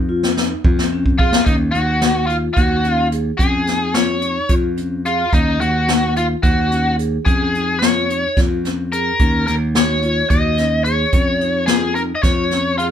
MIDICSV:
0, 0, Header, 1, 5, 480
1, 0, Start_track
1, 0, Key_signature, -6, "minor"
1, 0, Tempo, 551978
1, 1280, Time_signature, 7, 3, 24, 8
1, 11227, End_track
2, 0, Start_track
2, 0, Title_t, "Lead electric guitar"
2, 0, Program_c, 0, 29
2, 1029, Note_on_c, 0, 65, 81
2, 1262, Note_off_c, 0, 65, 0
2, 1266, Note_on_c, 0, 63, 80
2, 1332, Note_off_c, 0, 63, 0
2, 1492, Note_on_c, 0, 66, 78
2, 1968, Note_off_c, 0, 66, 0
2, 1971, Note_on_c, 0, 65, 72
2, 2040, Note_off_c, 0, 65, 0
2, 2204, Note_on_c, 0, 66, 75
2, 2543, Note_off_c, 0, 66, 0
2, 2543, Note_on_c, 0, 65, 75
2, 2665, Note_off_c, 0, 65, 0
2, 2936, Note_on_c, 0, 68, 70
2, 3429, Note_on_c, 0, 73, 82
2, 3440, Note_off_c, 0, 68, 0
2, 3937, Note_off_c, 0, 73, 0
2, 4399, Note_on_c, 0, 65, 78
2, 4640, Note_off_c, 0, 65, 0
2, 4644, Note_on_c, 0, 63, 80
2, 4874, Note_off_c, 0, 63, 0
2, 4878, Note_on_c, 0, 66, 90
2, 5322, Note_off_c, 0, 66, 0
2, 5366, Note_on_c, 0, 65, 73
2, 5430, Note_off_c, 0, 65, 0
2, 5591, Note_on_c, 0, 66, 80
2, 6039, Note_off_c, 0, 66, 0
2, 6307, Note_on_c, 0, 68, 71
2, 6757, Note_off_c, 0, 68, 0
2, 6772, Note_on_c, 0, 73, 84
2, 7289, Note_off_c, 0, 73, 0
2, 7759, Note_on_c, 0, 70, 77
2, 8224, Note_off_c, 0, 70, 0
2, 8235, Note_on_c, 0, 70, 70
2, 8300, Note_off_c, 0, 70, 0
2, 8494, Note_on_c, 0, 73, 82
2, 8953, Note_off_c, 0, 73, 0
2, 8956, Note_on_c, 0, 75, 93
2, 9426, Note_off_c, 0, 75, 0
2, 9430, Note_on_c, 0, 73, 81
2, 10122, Note_off_c, 0, 73, 0
2, 10142, Note_on_c, 0, 68, 76
2, 10389, Note_off_c, 0, 68, 0
2, 10393, Note_on_c, 0, 70, 71
2, 10442, Note_off_c, 0, 70, 0
2, 10567, Note_on_c, 0, 75, 62
2, 10630, Note_off_c, 0, 75, 0
2, 10633, Note_on_c, 0, 73, 86
2, 11085, Note_off_c, 0, 73, 0
2, 11115, Note_on_c, 0, 65, 72
2, 11181, Note_off_c, 0, 65, 0
2, 11227, End_track
3, 0, Start_track
3, 0, Title_t, "Vibraphone"
3, 0, Program_c, 1, 11
3, 79, Note_on_c, 1, 65, 78
3, 237, Note_off_c, 1, 65, 0
3, 323, Note_on_c, 1, 63, 68
3, 479, Note_off_c, 1, 63, 0
3, 560, Note_on_c, 1, 65, 74
3, 717, Note_off_c, 1, 65, 0
3, 803, Note_on_c, 1, 61, 69
3, 959, Note_off_c, 1, 61, 0
3, 1038, Note_on_c, 1, 68, 68
3, 1195, Note_off_c, 1, 68, 0
3, 1274, Note_on_c, 1, 61, 73
3, 1433, Note_off_c, 1, 61, 0
3, 1518, Note_on_c, 1, 63, 66
3, 1675, Note_off_c, 1, 63, 0
3, 1757, Note_on_c, 1, 66, 72
3, 1914, Note_off_c, 1, 66, 0
3, 1997, Note_on_c, 1, 65, 68
3, 2154, Note_off_c, 1, 65, 0
3, 2231, Note_on_c, 1, 66, 66
3, 2390, Note_off_c, 1, 66, 0
3, 2473, Note_on_c, 1, 61, 61
3, 2631, Note_off_c, 1, 61, 0
3, 2715, Note_on_c, 1, 68, 64
3, 2872, Note_off_c, 1, 68, 0
3, 2954, Note_on_c, 1, 61, 75
3, 3111, Note_off_c, 1, 61, 0
3, 3195, Note_on_c, 1, 63, 64
3, 3352, Note_off_c, 1, 63, 0
3, 3430, Note_on_c, 1, 65, 70
3, 3589, Note_off_c, 1, 65, 0
3, 3670, Note_on_c, 1, 63, 64
3, 3829, Note_off_c, 1, 63, 0
3, 3908, Note_on_c, 1, 65, 73
3, 4067, Note_off_c, 1, 65, 0
3, 4145, Note_on_c, 1, 61, 62
3, 4305, Note_off_c, 1, 61, 0
3, 4391, Note_on_c, 1, 68, 62
3, 4549, Note_off_c, 1, 68, 0
3, 4631, Note_on_c, 1, 61, 73
3, 4789, Note_off_c, 1, 61, 0
3, 4869, Note_on_c, 1, 63, 65
3, 5027, Note_off_c, 1, 63, 0
3, 5110, Note_on_c, 1, 66, 76
3, 5268, Note_off_c, 1, 66, 0
3, 5349, Note_on_c, 1, 65, 66
3, 5507, Note_off_c, 1, 65, 0
3, 5590, Note_on_c, 1, 66, 66
3, 5748, Note_off_c, 1, 66, 0
3, 5827, Note_on_c, 1, 61, 64
3, 5986, Note_off_c, 1, 61, 0
3, 6073, Note_on_c, 1, 68, 65
3, 6230, Note_off_c, 1, 68, 0
3, 6309, Note_on_c, 1, 61, 78
3, 6467, Note_off_c, 1, 61, 0
3, 6554, Note_on_c, 1, 63, 68
3, 6711, Note_off_c, 1, 63, 0
3, 6796, Note_on_c, 1, 65, 74
3, 6952, Note_off_c, 1, 65, 0
3, 7039, Note_on_c, 1, 63, 64
3, 7195, Note_off_c, 1, 63, 0
3, 7276, Note_on_c, 1, 65, 68
3, 7433, Note_off_c, 1, 65, 0
3, 7512, Note_on_c, 1, 61, 62
3, 7670, Note_off_c, 1, 61, 0
3, 7759, Note_on_c, 1, 68, 63
3, 7915, Note_off_c, 1, 68, 0
3, 7999, Note_on_c, 1, 61, 75
3, 8155, Note_off_c, 1, 61, 0
3, 8241, Note_on_c, 1, 63, 67
3, 8397, Note_off_c, 1, 63, 0
3, 8484, Note_on_c, 1, 66, 71
3, 8639, Note_off_c, 1, 66, 0
3, 8719, Note_on_c, 1, 65, 63
3, 8876, Note_off_c, 1, 65, 0
3, 8960, Note_on_c, 1, 66, 67
3, 9116, Note_off_c, 1, 66, 0
3, 9202, Note_on_c, 1, 61, 61
3, 9358, Note_off_c, 1, 61, 0
3, 9440, Note_on_c, 1, 68, 66
3, 9597, Note_off_c, 1, 68, 0
3, 9677, Note_on_c, 1, 61, 72
3, 9835, Note_off_c, 1, 61, 0
3, 9918, Note_on_c, 1, 63, 66
3, 10076, Note_off_c, 1, 63, 0
3, 10156, Note_on_c, 1, 65, 75
3, 10315, Note_off_c, 1, 65, 0
3, 10398, Note_on_c, 1, 63, 66
3, 10556, Note_off_c, 1, 63, 0
3, 10643, Note_on_c, 1, 65, 69
3, 10800, Note_off_c, 1, 65, 0
3, 10881, Note_on_c, 1, 61, 62
3, 11039, Note_off_c, 1, 61, 0
3, 11125, Note_on_c, 1, 68, 66
3, 11227, Note_off_c, 1, 68, 0
3, 11227, End_track
4, 0, Start_track
4, 0, Title_t, "Picked electric bass"
4, 0, Program_c, 2, 34
4, 0, Note_on_c, 2, 41, 92
4, 452, Note_off_c, 2, 41, 0
4, 561, Note_on_c, 2, 41, 80
4, 1198, Note_off_c, 2, 41, 0
4, 1274, Note_on_c, 2, 39, 75
4, 1489, Note_off_c, 2, 39, 0
4, 1519, Note_on_c, 2, 39, 71
4, 2155, Note_off_c, 2, 39, 0
4, 2235, Note_on_c, 2, 39, 84
4, 2872, Note_off_c, 2, 39, 0
4, 2949, Note_on_c, 2, 41, 84
4, 3801, Note_off_c, 2, 41, 0
4, 3907, Note_on_c, 2, 41, 73
4, 4548, Note_off_c, 2, 41, 0
4, 4637, Note_on_c, 2, 39, 71
4, 4848, Note_off_c, 2, 39, 0
4, 4873, Note_on_c, 2, 39, 73
4, 5511, Note_off_c, 2, 39, 0
4, 5598, Note_on_c, 2, 39, 87
4, 6234, Note_off_c, 2, 39, 0
4, 6315, Note_on_c, 2, 41, 86
4, 7166, Note_off_c, 2, 41, 0
4, 7282, Note_on_c, 2, 41, 75
4, 7917, Note_off_c, 2, 41, 0
4, 8000, Note_on_c, 2, 39, 75
4, 8211, Note_off_c, 2, 39, 0
4, 8248, Note_on_c, 2, 39, 72
4, 8882, Note_off_c, 2, 39, 0
4, 8963, Note_on_c, 2, 39, 79
4, 9600, Note_off_c, 2, 39, 0
4, 9680, Note_on_c, 2, 41, 85
4, 10533, Note_off_c, 2, 41, 0
4, 10639, Note_on_c, 2, 41, 79
4, 11227, Note_off_c, 2, 41, 0
4, 11227, End_track
5, 0, Start_track
5, 0, Title_t, "Drums"
5, 202, Note_on_c, 9, 38, 56
5, 289, Note_off_c, 9, 38, 0
5, 323, Note_on_c, 9, 38, 64
5, 410, Note_off_c, 9, 38, 0
5, 560, Note_on_c, 9, 36, 90
5, 647, Note_off_c, 9, 36, 0
5, 684, Note_on_c, 9, 38, 69
5, 771, Note_off_c, 9, 38, 0
5, 919, Note_on_c, 9, 36, 67
5, 1006, Note_off_c, 9, 36, 0
5, 1036, Note_on_c, 9, 36, 81
5, 1123, Note_off_c, 9, 36, 0
5, 1153, Note_on_c, 9, 38, 77
5, 1240, Note_off_c, 9, 38, 0
5, 1271, Note_on_c, 9, 42, 62
5, 1274, Note_on_c, 9, 36, 89
5, 1358, Note_off_c, 9, 42, 0
5, 1360, Note_off_c, 9, 36, 0
5, 1517, Note_on_c, 9, 42, 49
5, 1604, Note_off_c, 9, 42, 0
5, 1753, Note_on_c, 9, 38, 94
5, 1753, Note_on_c, 9, 42, 69
5, 1840, Note_off_c, 9, 38, 0
5, 1840, Note_off_c, 9, 42, 0
5, 1996, Note_on_c, 9, 42, 44
5, 2083, Note_off_c, 9, 42, 0
5, 2232, Note_on_c, 9, 36, 88
5, 2234, Note_on_c, 9, 42, 69
5, 2319, Note_off_c, 9, 36, 0
5, 2321, Note_off_c, 9, 42, 0
5, 2469, Note_on_c, 9, 42, 48
5, 2556, Note_off_c, 9, 42, 0
5, 2713, Note_on_c, 9, 42, 51
5, 2800, Note_off_c, 9, 42, 0
5, 2951, Note_on_c, 9, 36, 88
5, 2953, Note_on_c, 9, 42, 69
5, 3038, Note_off_c, 9, 36, 0
5, 3040, Note_off_c, 9, 42, 0
5, 3192, Note_on_c, 9, 38, 29
5, 3192, Note_on_c, 9, 42, 54
5, 3279, Note_off_c, 9, 38, 0
5, 3279, Note_off_c, 9, 42, 0
5, 3429, Note_on_c, 9, 38, 93
5, 3429, Note_on_c, 9, 42, 75
5, 3516, Note_off_c, 9, 38, 0
5, 3516, Note_off_c, 9, 42, 0
5, 3666, Note_on_c, 9, 42, 48
5, 3753, Note_off_c, 9, 42, 0
5, 3904, Note_on_c, 9, 42, 72
5, 3909, Note_on_c, 9, 36, 92
5, 3991, Note_off_c, 9, 42, 0
5, 3996, Note_off_c, 9, 36, 0
5, 4151, Note_on_c, 9, 42, 51
5, 4238, Note_off_c, 9, 42, 0
5, 4394, Note_on_c, 9, 42, 50
5, 4481, Note_off_c, 9, 42, 0
5, 4632, Note_on_c, 9, 36, 94
5, 4634, Note_on_c, 9, 42, 71
5, 4719, Note_off_c, 9, 36, 0
5, 4721, Note_off_c, 9, 42, 0
5, 4879, Note_on_c, 9, 42, 52
5, 4966, Note_off_c, 9, 42, 0
5, 5117, Note_on_c, 9, 38, 97
5, 5117, Note_on_c, 9, 42, 68
5, 5204, Note_off_c, 9, 38, 0
5, 5204, Note_off_c, 9, 42, 0
5, 5359, Note_on_c, 9, 42, 46
5, 5446, Note_off_c, 9, 42, 0
5, 5594, Note_on_c, 9, 36, 91
5, 5595, Note_on_c, 9, 42, 69
5, 5681, Note_off_c, 9, 36, 0
5, 5682, Note_off_c, 9, 42, 0
5, 5839, Note_on_c, 9, 42, 49
5, 5926, Note_off_c, 9, 42, 0
5, 6078, Note_on_c, 9, 42, 52
5, 6165, Note_off_c, 9, 42, 0
5, 6316, Note_on_c, 9, 36, 92
5, 6321, Note_on_c, 9, 42, 67
5, 6403, Note_off_c, 9, 36, 0
5, 6408, Note_off_c, 9, 42, 0
5, 6563, Note_on_c, 9, 42, 50
5, 6650, Note_off_c, 9, 42, 0
5, 6801, Note_on_c, 9, 38, 94
5, 6801, Note_on_c, 9, 42, 74
5, 6888, Note_off_c, 9, 38, 0
5, 6888, Note_off_c, 9, 42, 0
5, 7044, Note_on_c, 9, 42, 50
5, 7131, Note_off_c, 9, 42, 0
5, 7278, Note_on_c, 9, 36, 91
5, 7280, Note_on_c, 9, 38, 29
5, 7280, Note_on_c, 9, 42, 75
5, 7365, Note_off_c, 9, 36, 0
5, 7367, Note_off_c, 9, 38, 0
5, 7367, Note_off_c, 9, 42, 0
5, 7521, Note_on_c, 9, 38, 28
5, 7521, Note_on_c, 9, 42, 54
5, 7608, Note_off_c, 9, 38, 0
5, 7608, Note_off_c, 9, 42, 0
5, 7764, Note_on_c, 9, 42, 55
5, 7850, Note_off_c, 9, 42, 0
5, 7995, Note_on_c, 9, 42, 73
5, 7998, Note_on_c, 9, 36, 89
5, 8082, Note_off_c, 9, 42, 0
5, 8085, Note_off_c, 9, 36, 0
5, 8238, Note_on_c, 9, 42, 54
5, 8325, Note_off_c, 9, 42, 0
5, 8479, Note_on_c, 9, 38, 94
5, 8479, Note_on_c, 9, 42, 72
5, 8566, Note_off_c, 9, 38, 0
5, 8566, Note_off_c, 9, 42, 0
5, 8718, Note_on_c, 9, 42, 51
5, 8805, Note_off_c, 9, 42, 0
5, 8958, Note_on_c, 9, 42, 68
5, 8959, Note_on_c, 9, 36, 90
5, 9045, Note_off_c, 9, 36, 0
5, 9045, Note_off_c, 9, 42, 0
5, 9198, Note_on_c, 9, 38, 27
5, 9198, Note_on_c, 9, 42, 53
5, 9285, Note_off_c, 9, 38, 0
5, 9285, Note_off_c, 9, 42, 0
5, 9436, Note_on_c, 9, 42, 50
5, 9523, Note_off_c, 9, 42, 0
5, 9673, Note_on_c, 9, 42, 67
5, 9678, Note_on_c, 9, 36, 91
5, 9760, Note_off_c, 9, 42, 0
5, 9765, Note_off_c, 9, 36, 0
5, 9920, Note_on_c, 9, 42, 50
5, 10007, Note_off_c, 9, 42, 0
5, 10152, Note_on_c, 9, 38, 93
5, 10152, Note_on_c, 9, 42, 66
5, 10239, Note_off_c, 9, 38, 0
5, 10239, Note_off_c, 9, 42, 0
5, 10400, Note_on_c, 9, 42, 47
5, 10487, Note_off_c, 9, 42, 0
5, 10638, Note_on_c, 9, 36, 88
5, 10638, Note_on_c, 9, 38, 30
5, 10638, Note_on_c, 9, 42, 67
5, 10725, Note_off_c, 9, 36, 0
5, 10725, Note_off_c, 9, 38, 0
5, 10725, Note_off_c, 9, 42, 0
5, 10878, Note_on_c, 9, 38, 30
5, 10878, Note_on_c, 9, 42, 51
5, 10965, Note_off_c, 9, 38, 0
5, 10965, Note_off_c, 9, 42, 0
5, 11121, Note_on_c, 9, 42, 54
5, 11208, Note_off_c, 9, 42, 0
5, 11227, End_track
0, 0, End_of_file